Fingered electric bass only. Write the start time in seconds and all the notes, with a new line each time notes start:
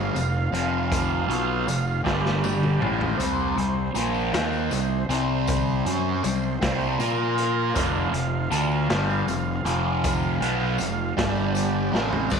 Already playing: G1
0.15 F1
0.53 F1
1.28 B1
1.67 F1
2.06 G1
2.82 A1
3.19 C2
3.57 C2
3.95 A#1
4.33 D#2
4.71 C2
5.09 C2
5.86 F#2
6.24 C2
6.62 C2
6.99 A#2
7.76 F1
8.12 F1
8.52 D2
8.89 G1
9.27 F1
9.64 F1
10.41 B1
10.79 F1
11.18 G1
11.92 A1
12.31 G1